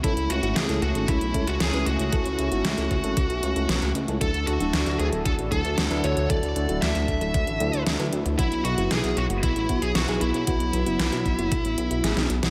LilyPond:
<<
  \new Staff \with { instrumentName = "Lead electric guitar" } { \time 4/4 \key d \lydian \tempo 4 = 115 e'8 fis'8 gis'8 fis'8 e'8. fis'16 gis'8 fis'8~ | fis'2.~ fis'8 r8 | a'8 fis'4 gis'8 a'8 a'4 cis''8 | d''4 e''2 r4 |
e'8 fis'8 gis'8 fis'8 e'8. gis'16 fis'8 e'8~ | e'2.~ e'8 r8 | }
  \new Staff \with { instrumentName = "FM electric piano" } { \time 4/4 \key d \lydian <cis' e' a'>16 r8 <cis' e' fis'>8 <cis' e' a'>8 <cis' e' a'>16 r8 <cis' e' a'>16 r8 <cis' e' b'>16 r8 | <cis' e' a'>16 r8 <cis' e' fis'>8 <cis' e' a'>8 <cis' e' a'>16 r8. <cis' e' a'>16 <cis' e' b'>8. <cis' e' a'>16 | <fis a d' e' a'>16 r8 <fis a d' e' fis'>8 <fis a d' e' a'>8 <fis a d' e' a'>16 r8 <fis a d' e' a'>16 r8 <fis a d' e' b'>16 r8 | <fis a d' e' a'>16 r8 <fis a d' e' fis'>8 <fis a d' e' a'>8 <fis a d' e' a'>16 r8 <fis a d' e' a'>16 r8 <fis a d' e' b'>16 r8 |
<b e' fis'>16 r8 <b e' fis'>8 <b e' fis'>8 <b e' fis'>16 r8 <b e' fis'>16 r8 <b e' gis'>16 r8 | <b e' fis'>16 r8 <b e' fis'>8 <b e' fis'>8 <b e' fis'>16 r8. <b e' fis'>16 <b e' gis'>8. <b e' fis'>16 | }
  \new Staff \with { instrumentName = "Analog synth pad" } { \time 4/4 \key d \lydian <a cis' e'>1~ | <a cis' e'>1 | <d d' e' fis' a'>1~ | <d d' e' fis' a'>1 |
<fis b>1~ | <fis b>1 | }
  \new Staff \with { instrumentName = "Analog synth bass" } { \clef bass \time 4/4 \key d \lydian cis,16 cis,16 cis,16 gis,,16 cis,16 cis,16 cis,16 gis,,16 cis,16 b,,16 cis,16 cis,16 cis,16 cis,16 cis,16 cis,16 | cis,16 cis,16 cis,16 gis,,16 cis,16 cis,16 cis,16 gis,,16 cis,16 b,,16 cis,16 cis,16 b,,16 cis,16 cis,16 cis,16 | d,16 d,16 d,16 d,,16 d,16 d,16 d,16 d,,16 d,16 a,,16 d,16 d,16 d,16 d,16 d,16 d,16 | d,16 d,16 d,16 d,,16 d,16 d,16 d,16 d,,16 d,16 a,,16 d,16 d,16 d,16 d,16 d,16 d,16 |
b,,16 b,,16 b,,16 fis,,16 b,,16 b,,16 b,,16 fis,,16 b,,16 a,,16 b,,16 b,,16 b,,16 b,,16 b,,16 b,,16 | b,,16 b,,16 b,,16 fis,,16 b,,16 b,,16 b,,16 fis,,16 b,,16 a,,16 b,,16 b,,16 a,,16 b,,16 b,,16 b,,16 | }
  \new DrumStaff \with { instrumentName = "Drums" } \drummode { \time 4/4 <hh bd>16 hh16 hh16 hh16 <hh sn>16 hh16 hh16 hh16 <hh bd>16 hh16 <hh bd>16 hh16 <hh sn>16 hh16 hh16 hh16 | <hh bd>16 hh16 hh16 hh16 <hh sn>16 hh16 <hh bd>16 hh16 <hh bd>16 hh16 hh16 hh16 <hh sn>16 hh16 hh16 hh16 | <hh bd>16 hh16 hh16 hh16 <hh sn>16 hh16 hh16 hh16 <hh bd>16 hh16 <hh bd>16 hh16 <hh sn>16 hh16 hh16 hh16 | <hh bd>16 hh16 hh16 hh16 <hh sn>16 hh16 <hh bd>16 hh16 <hh bd>16 hh16 hh16 hh16 <hh sn>16 hh16 hh16 hh16 |
<hh bd>16 hh16 hh16 hh16 <hh sn>16 hh16 hh16 hh16 <hh bd>16 hh16 <hh bd>16 hh16 <hh sn>16 hh16 hh16 hh16 | <hh bd>16 hh16 hh16 hh16 <hh sn>16 hh16 <hh bd>16 hh16 <hh bd>16 hh16 hh16 hh16 <hh sn>16 <hh sn>16 hh16 <hh sn>16 | }
>>